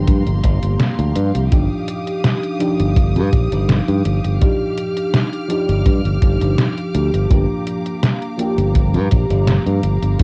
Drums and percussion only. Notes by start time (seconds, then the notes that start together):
0.07 kick, closed hi-hat
0.27 closed hi-hat
0.44 kick, closed hi-hat
0.63 closed hi-hat
0.80 snare, closed hi-hat
0.99 closed hi-hat
1.16 closed hi-hat
1.35 closed hi-hat
1.52 kick, closed hi-hat
1.88 closed hi-hat
2.08 closed hi-hat
2.24 snare, closed hi-hat
2.44 closed hi-hat
2.61 closed hi-hat
2.80 closed hi-hat
2.96 kick, closed hi-hat
3.16 closed hi-hat
3.33 kick, closed hi-hat
3.52 closed hi-hat
3.69 snare, closed hi-hat
3.88 closed hi-hat
4.05 closed hi-hat
4.24 closed hi-hat
4.42 kick, closed hi-hat
4.78 closed hi-hat
4.97 closed hi-hat
5.14 snare, closed hi-hat
5.33 closed hi-hat
5.50 closed hi-hat
5.69 closed hi-hat
5.86 kick, closed hi-hat
6.05 closed hi-hat
6.22 kick, closed hi-hat
6.41 closed hi-hat
6.58 snare, closed hi-hat
6.78 closed hi-hat
6.94 closed hi-hat
7.14 closed hi-hat
7.30 kick, closed hi-hat
7.67 closed hi-hat
7.86 closed hi-hat
8.03 snare, closed hi-hat
8.22 closed hi-hat
8.39 closed hi-hat
8.58 closed hi-hat
8.75 kick, closed hi-hat
8.94 closed hi-hat
9.11 kick, closed hi-hat
9.30 closed hi-hat
9.47 snare, closed hi-hat
9.66 closed hi-hat
9.83 closed hi-hat
10.03 closed hi-hat
10.19 kick, closed hi-hat